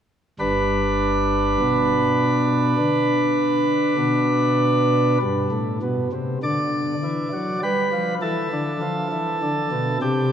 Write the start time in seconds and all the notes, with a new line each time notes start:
0.40 G1 G2 D4 B4
1.60 B2
2.78 D3
3.98 B2
5.22 G2
5.52 A2
5.82 B2
6.13 C3
6.43 D3 D5
7.03 E3
7.33 F#3
7.63 G3 B4
7.93 F3
8.22 E3 A4
8.53 D3
8.82 F3
9.12 E3
9.42 D3
9.72 B2
10.02 C3 G4